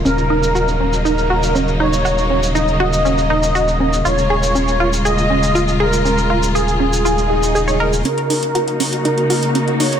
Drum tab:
HH |----------------|----------------|----------------|----------------|
SH |xx-xxx-xxx-xxx-x|xx-xxx-xxx-xxx-x|xx-xxx-xxx-xxx-x|xx-xxx-xxx-xxx-x|

HH |xxoxxxoxxxoxxxox|
SH |----------------|